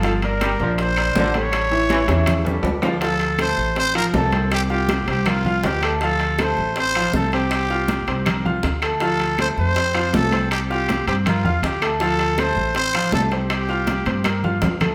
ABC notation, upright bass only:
X:1
M:4/4
L:1/8
Q:1/4=160
K:Dm
V:1 name="Upright bass" clef=bass
G,,,3 B,,,3 A,,,2- | A,,,3 E,,3 D,,2- | D,,3 A,,,3 C,,2- | C,,3 C,,3 D,,2- |
D,,3 A,,,3 C,,2- | C,,3 C,,3 D,,2- | D,,3 F,,3 C,,2- | C,,3 G,,2 E,, D,,2- |
D,,3 A,,,3 C,,2- | C,,3 G,,3 D,,2 |]